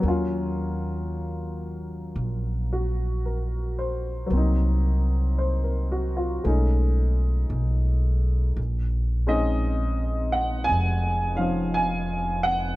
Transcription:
0.00 2.13 D#2 medium
0.00 4.25 F#3 medium
0.00 4.29 A#3 soft
0.05 4.32 C#4 soft
0.05 4.33 F4 medium
2.16 4.26 A#1 medium
2.73 3.48 F#4 soft
3.26 4.10 A#4 soft
3.79 4.54 C5 soft
4.26 6.40 C2 medium
4.26 6.42 F#3 soft
4.31 6.44 A#3 soft
4.31 6.45 C4 soft
4.37 6.46 D#4 medium
5.38 5.87 C5 soft
5.64 6.09 A#4 soft
5.92 6.25 F#4 soft
6.17 6.54 F4 soft
6.43 7.47 B1 medium
6.43 8.57 G#3 soft
6.43 8.57 A3 soft
6.43 8.58 C#4 soft
6.43 8.58 D#4 medium
7.50 8.53 B1 medium
8.57 10.64 A#1 medium
9.27 12.76 G#3 soft
9.27 12.76 C4 soft
9.27 11.34 C#4 soft
9.27 11.36 D#4 medium
9.27 10.30 D#5 medium
10.32 10.66 F#5 medium
10.64 11.32 G#5 medium
10.69 12.76 F1 medium
11.35 12.76 F3 soft
11.35 12.76 C#4 soft
11.35 12.76 D#4 soft
11.35 11.75 F5 medium
11.74 12.40 G#5 medium
12.43 12.76 F#5 medium

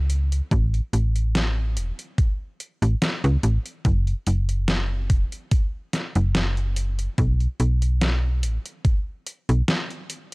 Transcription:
0.00 0.41 C#2 medium
0.10 closed hi-hat medium
0.32 closed hi-hat medium
0.51 0.80 A1 loud
0.51 kick loud
0.51 closed hi-hat medium
0.74 closed hi-hat soft
0.93 1.78 A1 medium
0.93 closed hi-hat medium
1.16 closed hi-hat soft
1.35 snare loud
1.35 closed hi-hat medium
1.76 1.92 E1 medium
1.76 closed hi-hat medium
1.99 closed hi-hat medium
2.18 kick loud
2.18 closed hi-hat medium
2.60 closed hi-hat medium
2.82 2.95 A1 medium
2.82 closed hi-hat medium
3.02 snare loud
3.02 closed hi-hat medium
3.24 3.37 C#2 loud
3.24 closed hi-hat soft
3.43 3.58 A1 medium
3.43 closed hi-hat medium
3.66 closed hi-hat soft
3.85 4.14 F#1 loud
3.85 kick loud
3.85 closed hi-hat medium
4.07 closed hi-hat soft
4.27 5.11 F#1 medium
4.27 closed hi-hat medium
4.49 closed hi-hat soft
4.68 snare loud
4.68 closed hi-hat medium
5.10 5.25 E1 medium
5.10 kick loud
5.10 closed hi-hat medium
5.32 closed hi-hat medium
5.51 kick loud
5.51 closed hi-hat medium
5.93 snare medium
5.93 closed hi-hat medium
6.15 7.08 F#1 medium
6.15 closed hi-hat soft
6.35 snare loud
6.35 closed hi-hat medium
6.57 closed hi-hat soft
6.76 closed hi-hat medium
6.99 closed hi-hat soft
7.18 7.47 B1 loud
7.18 kick loud
7.18 closed hi-hat medium
7.40 closed hi-hat soft
7.60 8.45 B1 medium
7.60 closed hi-hat medium
7.82 closed hi-hat soft
8.01 snare loud
8.01 closed hi-hat medium
8.43 8.58 A1 medium
8.43 closed hi-hat medium
8.66 closed hi-hat medium
8.85 kick loud
8.85 closed hi-hat medium
9.27 closed hi-hat medium
9.49 9.62 B1 medium
9.49 closed hi-hat soft
9.68 snare loud
9.68 closed hi-hat medium
9.90 closed hi-hat soft
10.10 closed hi-hat medium

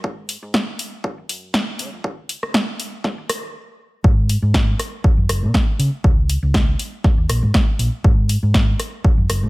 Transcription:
0.04 0.35 G#2 loud
0.04 kick loud
0.29 open hi-hat loud
0.42 0.73 G#2 loud
0.54 kick loud
0.54 snare loud
0.79 open hi-hat medium
1.04 kick loud
1.18 1.25 F#2 medium
1.29 1.60 F#2 loud
1.29 open hi-hat loud
1.54 kick loud
1.54 snare loud
1.68 1.81 F#1 loud
1.79 1.88 C#3 medium
1.79 open hi-hat medium
1.93 2.00 F2 loud
2.04 kick loud
2.29 open hi-hat loud
2.43 2.73 C#2 loud
2.43 cross-stick medium
2.54 kick loud
2.54 snare loud
2.80 open hi-hat medium
3.04 kick loud
3.04 snare soft
3.18 3.25 D#2 medium
3.29 3.54 D#2 medium
3.29 cross-stick medium
3.29 open hi-hat loud
4.04 4.35 G#2 loud
4.04 kick loud
4.29 open hi-hat loud
4.42 4.73 G#2 loud
4.54 kick loud
4.54 snare loud
4.79 cross-stick medium
4.79 open hi-hat medium
5.04 muted fingered electric bass stroke soft
5.04 kick loud
5.17 5.25 F#2 medium
5.29 5.44 F#1 loud
5.29 cross-stick medium
5.29 open hi-hat loud
5.43 5.50 A#2 medium
5.54 kick loud
5.54 snare loud
5.79 5.88 C#3 medium
5.79 open hi-hat medium
6.04 6.35 C#2 loud
6.04 kick loud
6.29 open hi-hat loud
6.43 6.73 C#2 loud
6.54 kick loud
6.54 snare loud
6.79 open hi-hat loud
7.04 kick loud
7.04 snare soft
7.18 7.25 D#2 medium
7.29 7.44 A#1 loud
7.29 cross-stick medium
7.29 open hi-hat loud
7.42 7.50 G#2 medium
7.54 kick loud
7.54 snare loud
7.79 7.88 A#1 medium
7.79 open hi-hat loud
8.04 8.35 G#2 loud
8.04 kick loud
8.29 open hi-hat loud
8.43 8.73 G#2 loud
8.54 kick loud
8.54 snare loud
8.80 cross-stick medium
8.80 open hi-hat loud
9.04 muted fingered electric bass stroke soft
9.04 kick loud
9.18 9.25 F#2 medium
9.29 9.44 F#1 loud
9.29 cross-stick medium
9.29 open hi-hat loud
9.43 9.49 A#2 medium

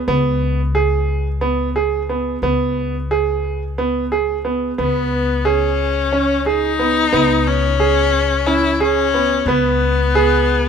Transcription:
0.08 2.39 C#2 medium
0.08 0.59 B3 medium
0.75 1.26 G#4 medium
1.41 1.67 B3 medium
1.76 2.02 G#4 medium
2.09 2.35 B3 medium
2.42 4.73 C#2 medium
2.42 2.94 B3 medium
3.11 3.62 G#4 medium
3.78 4.04 B3 medium
4.12 4.37 G#4 medium
4.45 4.70 B3 medium
4.78 7.09 C#2 medium
4.78 5.30 B3 medium
4.78 5.46 B3 medium
5.45 6.47 C#4 loud
5.45 5.96 G#4 medium
6.12 6.38 C#4 medium
6.46 7.49 D#4 loud
6.46 6.72 G#4 medium
6.79 7.05 B3 medium
7.13 9.43 C#2 medium
7.13 7.64 B3 loud
7.47 8.47 C#4 loud
7.80 8.31 G#4 medium
8.46 8.72 C#4 medium
8.46 8.82 E4 loud
8.80 9.48 C#4 loud
8.80 9.06 G#4 medium
9.14 9.40 B3 medium
9.46 10.69 C#2 medium
9.46 10.69 B3 loud
9.46 9.99 B3 loud
10.15 10.66 G#4 medium

